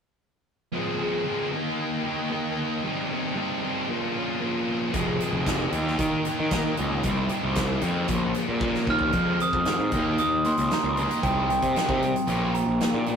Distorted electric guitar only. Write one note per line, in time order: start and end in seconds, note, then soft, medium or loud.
0.73 1.24 F3 medium
0.73 1.01 G#3 medium
0.73 1.00 C4 medium
0.73 0.98 G#4 medium
0.99 1.25 G#3 soft
0.99 1.26 C4 medium
0.99 1.27 G#4 medium
1.25 1.50 F3 medium
1.25 1.51 G#3 medium
1.25 1.51 C4 medium
1.25 1.51 G#4 medium
1.52 2.29 A#3 medium
1.52 2.06 D#4 medium
1.52 2.03 G4 medium
2.04 2.31 D#4 medium
2.04 2.32 G4 medium
2.30 2.82 A#3 medium
2.30 2.82 D#4 medium
2.30 2.83 G4 medium
2.84 3.34 G3 medium
2.84 3.12 C4 medium
2.84 3.10 D#4 loud
2.84 3.08 G4 medium
3.09 3.35 C4 medium
3.09 3.36 D#4 medium
3.09 3.37 G4 medium
3.35 3.87 G3 medium
3.35 3.64 C4 medium
3.35 3.62 D#4 medium
3.35 3.60 G4 medium
3.61 3.88 C4 medium
3.61 3.88 D#4 medium
3.61 3.87 G4 medium
3.87 4.39 F3 medium
3.87 4.16 A#3 medium
3.87 4.15 C#4 medium
3.87 4.13 F4 medium
4.14 4.40 A#3 medium
4.14 4.40 C#4 medium
4.14 4.41 F4 medium
4.40 4.91 F3 medium
4.40 4.92 A#3 medium
4.40 4.92 C#4 medium
4.40 4.93 F4 medium
4.92 5.44 F3 medium
4.92 5.22 G#3 medium
4.92 5.21 C4 medium
4.92 5.19 G#4 medium
5.20 5.45 G#3 soft
5.20 5.47 C4 medium
5.20 5.48 G#4 medium
5.45 5.71 F3 medium
5.45 5.71 G#3 medium
5.45 5.72 C4 medium
5.45 5.71 G#4 medium
5.72 6.50 A#3 medium
5.72 6.27 D#4 medium
5.72 6.24 G4 medium
6.25 6.52 D#4 medium
6.25 6.54 G4 medium
6.51 7.02 A#3 medium
6.51 7.03 D#4 medium
6.51 7.04 G4 medium
7.03 7.55 C4 medium
7.03 7.32 D#4 medium
7.03 7.29 G4 loud
7.30 7.56 D#4 soft
7.30 7.58 G4 medium
7.56 8.07 C4 medium
7.56 7.84 D#4 medium
7.56 7.81 G4 medium
7.82 8.08 D#4 medium
7.82 8.07 G4 medium
8.08 8.60 F3 medium
8.08 8.38 A#3 loud
8.08 8.34 C#4 medium
8.35 8.62 A#3 medium
8.35 8.64 C#4 medium
8.61 9.12 F3 medium
8.61 9.13 A#3 medium
8.61 9.14 C#4 loud
9.14 9.38 G#3 medium
9.14 9.39 C4 medium
9.14 9.39 F4 medium
9.41 9.64 G#3 medium
9.41 9.64 C4 medium
9.66 9.90 G#3 medium
9.66 9.90 C4 medium
9.93 10.17 A#3 medium
9.93 10.18 D#4 medium
9.93 10.18 G4 medium
10.19 10.42 A#3 medium
10.19 10.43 D#4 medium
10.45 10.69 A#3 medium
10.45 10.69 D#4 medium
10.71 10.95 A#3 medium
10.71 10.95 D#4 medium
10.98 11.22 A#3 medium
10.98 11.22 D#4 medium
10.98 11.23 G4 medium
11.22 11.47 G3 medium
11.22 11.48 C4 medium
11.22 11.48 D#4 medium
11.51 11.73 G3 medium
11.51 11.74 C4 medium
11.74 12.00 G3 medium
11.74 12.00 C4 medium
11.74 12.01 D#4 medium
12.03 12.26 G3 medium
12.03 12.26 C4 medium
12.27 12.52 F3 medium
12.27 12.53 A#3 medium
12.27 12.53 C#4 medium
12.55 12.78 F3 medium
12.55 12.78 A#3 medium
12.81 13.04 F3 medium
12.81 13.05 A#3 medium
13.08 13.16 F3 medium
13.08 13.16 A#3 medium